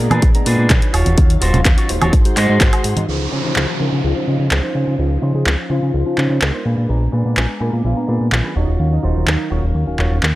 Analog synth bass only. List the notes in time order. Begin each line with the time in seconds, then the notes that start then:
0.11 A#2
0.23 A#1
0.35 A#2
0.46 A#2
0.59 A#2
0.70 A#1
0.94 D#1
1.06 D#1
1.18 D#2
1.42 D#1
1.54 D#1
1.65 D#2
1.89 D#1
2.01 D#1
2.13 G#1
2.25 G#2
2.37 G#2
2.49 G#2
2.61 G#1
2.85 G#2
2.97 G#2
3.09 C#2
3.32 C#3
3.45 C#3
3.56 C#2
3.80 C#3
3.92 C#3
4.04 C#2
4.16 C#3
4.27 C#3
4.40 C#3
4.51 C#2
4.75 C#3
4.87 C#3
4.99 C#2
5.22 C#3
5.35 C#3
5.46 C#2
5.70 C#3
5.82 C#3
5.94 C#2
6.06 C#3
6.18 C#3
6.30 C#3
6.42 C#2
6.65 A#2
6.78 A#2
6.89 A#1
7.13 A#2
7.26 A#2
7.37 A#1
7.61 A#2
7.73 A#2
7.85 A#1
7.97 A#2
8.09 A#2
8.21 A#2
8.32 A#1
8.56 D#1
8.68 D#1
8.80 D#2
9.04 D#1
9.16 D#1
9.27 D#2
9.51 D#1
9.63 D#1
9.75 D#2
9.87 D#1
9.99 D#1
10.11 D#1
10.23 D#2